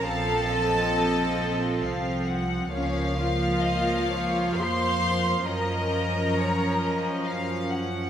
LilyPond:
<<
  \new Staff \with { instrumentName = "Violin section" } { \time 3/4 \key bes \minor \tempo 4 = 67 a''2~ a''8 r8 | des''8 f''4. c'''4 | bes''2~ bes''8 r8 | }
  \new Staff \with { instrumentName = "Violin section" } { \time 3/4 \key bes \minor f''8 ees''4. f''8 ges''8 | f''4 ees''8 des''8 f''4 | ees''4 des''8 ees''8 f''8 ges''8 | }
  \new Staff \with { instrumentName = "Cello section" } { \time 3/4 \key bes \minor a'2~ a'8 r8 | des'8 f'4. c''4 | bes'2~ bes'8 r8 | }
  \new Staff \with { instrumentName = "Viola section" } { \clef bass \time 3/4 \key bes \minor <f c'>2. | <f bes>2. | <f des'>2. | }
  \new Staff \with { instrumentName = "Double bass section" } { \clef bass \time 3/4 \key bes \minor bes,,2 c,4 | des,2 f,4 | ges,2. | }
>>